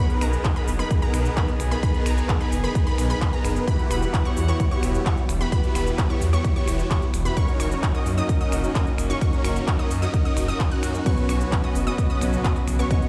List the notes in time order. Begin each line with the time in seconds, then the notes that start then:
Already playing: B3
0.00 D#3 B3 D#4 G#4 A#4 B4 B5
0.10 closed hi-hat
0.21 B1 B3 D#4 G#4 A#4 B4 A#5, finger snap, open hi-hat, shaker
0.33 closed hi-hat, shaker
0.44 kick, clap, closed hi-hat, shaker
0.56 B3 D#4 G#4 A#4 B4 B5, closed hi-hat
0.68 F#1, open hi-hat, shaker
0.79 B3 D#4 G#4 A#4 B4 B5, closed hi-hat, shaker
0.91 kick, closed hi-hat, shaker
1.02 B3 D#4 G#4 A#4 B4 A#5, closed hi-hat
1.14 B1, finger snap, open hi-hat, shaker
1.25 closed hi-hat, shaker
1.37 B3 D#4 G#4 A#4 B4 B5, kick, clap, closed hi-hat, shaker
1.48 closed hi-hat
1.60 B1, finger snap, open hi-hat, shaker
1.71 B3 D#4 G#4 A#4 B4 B5, closed hi-hat, shaker
1.83 B3 D#4 G#4 A#4 B4 B5, kick, closed hi-hat, shaker
1.94 closed hi-hat
2.06 B1 B3 D#4 G#4 A#4 B4 A#5, finger snap, open hi-hat, shaker
2.18 closed hi-hat, shaker
2.29 kick, clap, closed hi-hat, shaker
2.41 B3 D#4 G#4 A#4 B4 B5, closed hi-hat
2.52 F#1, open hi-hat, shaker
2.64 B3 D#4 G#4 A#4 B4 B5, closed hi-hat, shaker
2.75 kick, closed hi-hat, shaker
2.87 B3 D#4 G#4 A#4 B4 B5, closed hi-hat
2.98 B1, finger snap, open hi-hat, shaker
3.10 B3 D#4 G#4 A#4 B4 B5, closed hi-hat, shaker
3.21 kick, clap, closed hi-hat, shaker
3.33 B3 D#4 G#4 A#4 B4 A#5, closed hi-hat
3.44 F#1, finger snap, open hi-hat, shaker
3.56 closed hi-hat, shaker
3.67 E3 G3 B3 E4 F#4 G4 B4 F#5 B5, kick, closed hi-hat, shaker
3.79 closed hi-hat
3.90 E1 B3 E4 F#4 G4 B4 B5, finger snap, open hi-hat, shaker
4.02 closed hi-hat, shaker
4.14 kick, clap, closed hi-hat, shaker
4.25 B3 E4 F#4 G4 C#5 C#6, closed hi-hat
4.37 E2, open hi-hat, shaker
4.48 B3 E4 F#4 G4 C#5 C#6, closed hi-hat, shaker
4.60 kick, closed hi-hat, shaker
4.71 B3 E4 F#4 G4 C#5 C#6, closed hi-hat
4.83 E1, finger snap, open hi-hat, shaker
4.94 closed hi-hat, shaker
5.06 B3 E4 F#4 G4 C#5 C#6, kick, clap, closed hi-hat, shaker
5.18 closed hi-hat
5.29 E1, finger snap, open hi-hat, shaker
5.41 B3 E4 F#4 G4 B4 B5, closed hi-hat, shaker
5.52 B3 E4 F#4 G4 B4 B5, kick, closed hi-hat, shaker
5.64 closed hi-hat
5.75 E1 B3 E4 F#4 G4 B4 B5, finger snap, open hi-hat, shaker
5.87 closed hi-hat, shaker
5.98 kick, clap, closed hi-hat, shaker
6.10 B3 E4 F#4 G4 C#5 C#6, closed hi-hat
6.21 E2, open hi-hat, shaker
6.33 B3 E4 F#4 G4 C#5 C#6, closed hi-hat, shaker
6.44 kick, closed hi-hat, shaker
6.56 B3 E4 F#4 G4 C#5 C#6, closed hi-hat
6.68 E1, finger snap, open hi-hat, shaker
6.79 closed hi-hat, shaker
6.91 B3 E4 F#4 G4 C#5 C#6, kick, clap, closed hi-hat, shaker
7.02 closed hi-hat
7.14 E1, finger snap, open hi-hat, shaker
7.25 B3 E4 F#4 G4 B4 B5, closed hi-hat, shaker
7.37 D#3 A#3 C#4 D#4 F#4 A#4 C#5 C#6, kick, closed hi-hat, shaker
7.48 closed hi-hat
7.60 F#1 C#4 D#4 F#4 A#4 C#5 C#6, finger snap, open hi-hat, shaker
7.71 closed hi-hat, shaker
7.83 kick, clap, closed hi-hat, shaker
7.94 C#4 D#4 F#4 A#4 D#5 D#6, closed hi-hat
8.06 F#2, open hi-hat, shaker
8.17 C#4 D#4 F#4 A#4 D#5 D#6, closed hi-hat, shaker
8.29 kick, closed hi-hat, shaker
8.40 C#4 D#4 F#4 A#4 D#5 D#6, closed hi-hat
8.52 F#1, finger snap, open hi-hat, shaker
8.64 closed hi-hat, shaker
8.75 C#4 D#4 F#4 A#4 D#5 D#6, kick, clap, closed hi-hat, shaker
8.87 closed hi-hat
8.98 F#1, finger snap, open hi-hat, shaker
9.10 C#4 D#4 F#4 A#4 C#5 C#6, closed hi-hat, shaker
9.21 C#4 D#4 F#4 A#4 C#5 C#6, kick, closed hi-hat, shaker
9.33 closed hi-hat
9.44 F#1 C#4 D#4 F#4 A#4 C#5 C#6, finger snap, open hi-hat, shaker
9.56 closed hi-hat, shaker
9.68 kick, clap, closed hi-hat, shaker
9.79 C#4 D#4 F#4 A#4 D#5 D#6, closed hi-hat
9.91 F#2, open hi-hat, shaker
10.02 C#4 D#4 F#4 A#4 D#5 D#6, closed hi-hat, shaker
10.14 kick, closed hi-hat, shaker
10.25 C#4 D#4 F#4 A#4 D#5 D#6, closed hi-hat
10.37 F#1, finger snap, open hi-hat, shaker
10.48 C#4 D#4 F#4 A#4 D#5 D#6, closed hi-hat, shaker
10.60 kick, clap, closed hi-hat, shaker
10.71 C#4 D#4 F#4 A#4 F#5 F#6, closed hi-hat
10.83 F#2, finger snap, open hi-hat, shaker
10.94 closed hi-hat, shaker
11.05 B2 C#3 F#3 B3 C#4 F#4 B4 C#5 C#6, kick, closed hi-hat, crash, shaker
11.18 closed hi-hat
11.29 B1 B3 C#4 F#4 B4 C#5 C#6, finger snap, open hi-hat, shaker
11.41 closed hi-hat, shaker
11.52 kick, clap, closed hi-hat, shaker
11.64 B3 C#4 F#4 B4 D#5 D#6, closed hi-hat
11.75 F#1, open hi-hat, shaker
11.87 B3 C#4 F#4 B4 D#5 D#6, closed hi-hat, shaker
11.98 kick, closed hi-hat, shaker
12.10 B3 C#4 F#4 B4 D#5 D#6, closed hi-hat
12.20 B1 B2 F#3 B3 C#4 C#5, finger snap, open hi-hat, shaker
12.33 closed hi-hat, shaker
12.44 B3 C#4 F#4 B4 D#5 D#6, kick, clap, closed hi-hat, shaker
12.56 closed hi-hat
12.68 B1, finger snap, open hi-hat, shaker
12.79 B3 C#4 F#4 B4 C#5 C#6, closed hi-hat, shaker
12.89 B2 F#3 B3 C#4 F#4 B4 C#5 D#5 C#6, kick, closed hi-hat, shaker
13.02 closed hi-hat